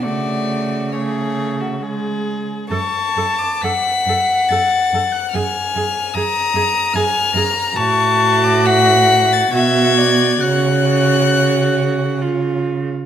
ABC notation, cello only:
X:1
M:3/4
L:1/16
Q:1/4=68
K:F#m
V:1 name="Cello" clef=bass
C,8- C,3 z | F,,2 F,,2 F,,2 F,,2 F,,2 F,,2 | F,,2 F,,2 F,,2 F,,2 F,,2 F,,2 | A,,8 B,,4 |
C,8- C,3 z |]